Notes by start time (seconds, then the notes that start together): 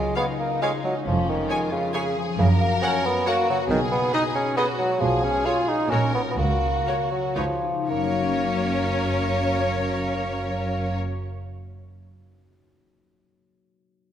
Already playing: C#3 G#3 C#4 F4
0.16 B3 D#4 F4 G#4 C#5 F5
0.39 A#3 G#4
0.62 G#3 F4 G#4 C#5 F5
0.84 F#3 G#3
1.06 F1 F2 F3 C#4
1.28 D#3 G#3
1.49 C#4 F4 G#4 C#5 G#5
1.72 C#3 F4
1.93 C#3 C#4 G#4 C#5 G#5
2.16 F3
2.37 F#1 F#2 C#3 A#4
2.60 A#3
2.82 C#4 A#4 C#5 F#5
3.04 B3 A#4
3.26 A#3 C#4 F#4 A#4 C#5 F#5
3.49 C#3 F#3
3.69 B1 B2 D#3 G#4
3.91 B3
4.12 D#4 G#4 B4 D#5
4.35 C#4 G#4
4.57 B3 F#4 G#4 B4 D#5
4.79 F#3 G#3
5.00 B1 B2 F3 G#4
5.22 G#3 C#4
5.45 C#4 F4 G#4 C#5
5.68 D#4 G#4
5.90 A#1 A#2 C#4 F#4 A#4 C#5
6.14 B3 C#4 F#4
6.31 B3
6.38 C#2 C#3 A#3 F#4
6.62 C#4
6.86 F#4 A#4 C#5
7.11 F#3 A#4
7.35 C#2 C#3 F3 D#4 F4 B4 C#5
7.62 D#4 G#4
7.88 F#1 F#2 A#3 C#4 A#4 C#5
7.96 F#3
8.03 A#3
8.10 C#4
8.17 F#4
8.24 C#5